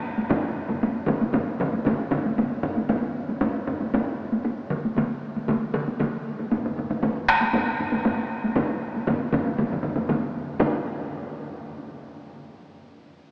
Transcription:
0.18 taiko high medium
0.30 taiko low-mid loud
0.30 taiko mid loud
0.30 taiko high medium
0.68 taiko low-mid medium
0.68 taiko mid medium
0.68 taiko high medium
0.83 taiko high medium
1.07 taiko low-mid loud
1.07 taiko mid loud
1.07 taiko high medium
1.21 taiko high medium
1.33 taiko low-mid loud
1.33 taiko mid loud
1.33 taiko high medium
1.60 taiko low-mid loud
1.60 taiko mid loud
1.73 taiko high medium
1.85 taiko low-mid loud
1.85 taiko mid loud
1.85 taiko high medium
2.11 taiko low-mid loud
2.11 taiko mid loud
2.26 taiko high medium
2.38 taiko high medium
2.63 taiko low-mid loud
2.76 taiko high medium
2.89 taiko low-mid loud
2.89 taiko high medium
3.29 taiko high medium
3.41 taiko low-mid loud
3.41 taiko high medium
3.67 taiko low-mid loud
3.80 taiko high medium
3.94 taiko low-mid loud
3.94 taiko high medium
4.32 taiko high medium
4.45 taiko high medium
4.70 taiko mid loud
4.85 taiko high medium
4.97 taiko mid loud
4.97 taiko high medium
5.36 taiko high medium
5.48 taiko mid loud
5.48 taiko high medium
5.74 taiko mid loud
5.88 taiko high medium
6.00 taiko mid loud
6.00 taiko high medium
6.40 taiko high medium
6.51 taiko low-mid medium
6.51 taiko high medium
6.65 taiko low-mid medium
6.78 taiko low-mid medium
6.90 taiko low-mid medium
6.90 taiko high medium
7.03 taiko low-mid loud
7.03 taiko high medium
7.29 taiko rim medium
7.41 taiko high medium
7.53 taiko low-mid loud
7.53 taiko high medium
7.79 taiko low-mid medium
7.92 taiko low-mid medium
7.92 taiko high medium
8.05 taiko low-mid loud
8.05 taiko high medium
8.44 taiko high medium
8.55 taiko low-mid loud
8.55 taiko mid loud
8.55 taiko high medium
8.95 taiko high medium
9.07 taiko low-mid loud
9.07 taiko mid loud
9.07 taiko high medium
9.33 taiko low-mid loud
9.33 taiko mid loud
9.33 taiko high medium
9.46 taiko high medium
9.58 taiko low-mid medium
9.58 taiko mid medium
9.58 taiko high medium
9.71 taiko low-mid medium
9.71 taiko mid medium
9.83 taiko low-mid medium
9.83 taiko mid medium
9.96 taiko low-mid medium
9.96 taiko mid medium
9.96 taiko high medium
10.09 taiko low-mid loud
10.09 taiko mid loud
10.09 taiko high medium
10.60 taiko low-mid loud
10.60 taiko mid loud
10.60 taiko high medium

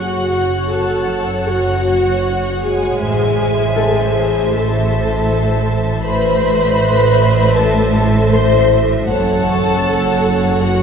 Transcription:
0.00 2.94 F#1 medium
0.00 2.95 F#1 medium
0.00 2.95 F#2 soft
0.00 0.68 F#4 medium
0.00 0.70 F#4 medium
0.00 2.95 F#4 soft
0.00 2.95 C#5 medium
0.00 2.95 C#5 soft
0.00 0.69 F#5 medium
0.00 2.95 F#5 medium
0.00 2.96 F#5 soft
0.00 2.59 C#6 soft
0.00 2.57 F#6 soft
0.69 1.46 A4 medium
0.69 1.47 A4 medium
0.69 1.47 A5 medium
1.47 2.61 F#4 medium
1.47 2.62 F#4 medium
1.47 2.61 F#5 medium
2.61 4.50 G#3 medium
2.61 4.47 G#4 medium
2.61 4.51 G#5 medium
2.99 6.03 A1 medium
2.99 5.99 A1 medium
2.99 5.99 A2 medium
2.99 6.03 E4 soft
2.99 6.02 C5 soft
2.99 6.00 C5 medium
2.99 6.02 E5 soft
2.99 6.00 E5 medium
3.76 7.66 A4 medium
4.51 6.03 A4 medium
4.51 5.87 A4 medium
4.51 6.01 A5 medium
4.91 8.81 B6 medium
6.03 9.06 A1 medium
6.03 9.06 A2 medium
6.03 9.06 A4 soft
6.03 7.53 B4 medium
6.03 7.53 C5 medium
6.03 9.06 C5 soft
6.03 9.06 C5 medium
6.03 9.06 E5 medium
6.03 9.06 E5 soft
6.03 7.53 B5 medium
7.55 8.33 A4 medium
7.55 8.32 A5 medium
8.32 8.71 C5 medium
8.32 8.72 C5 medium
8.32 8.71 C6 medium
9.08 10.83 F#1 medium
9.08 10.83 F#2 medium
9.08 10.58 A4 loud
9.08 10.83 A4 soft
9.08 10.58 A4 medium
9.08 10.83 C#5 soft
9.08 10.83 C#5 medium
9.08 10.83 F#5 medium
9.08 10.83 F#5 soft
9.08 10.58 A5 medium
9.50 10.83 C#6 soft
10.61 10.83 F#4 medium
10.61 10.83 F#5 medium

